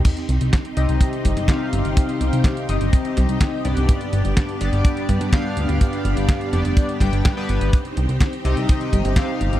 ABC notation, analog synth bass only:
X:1
M:4/4
L:1/16
Q:1/4=125
K:Cm
V:1 name="Analog synth bass" clef=bass
z2 C,, C,, z2 C,, C,, z2 G,,, G,,, z2 G,,, G,,, | z2 C,, C,, z2 G,,, G,,, z2 C,, C,, z2 C,, C,, | z2 G,,, G,,, z2 G,,, G,,, z2 G,, G,, z2 D,, D,, | z2 G,,, G,,, z2 F,,, F,,, z2 G,,, G,,, z2 G,,, G,,, |
z2 C,, C,, z2 C,, C,, z2 G,,, G,,, z2 G,,, G,,, |]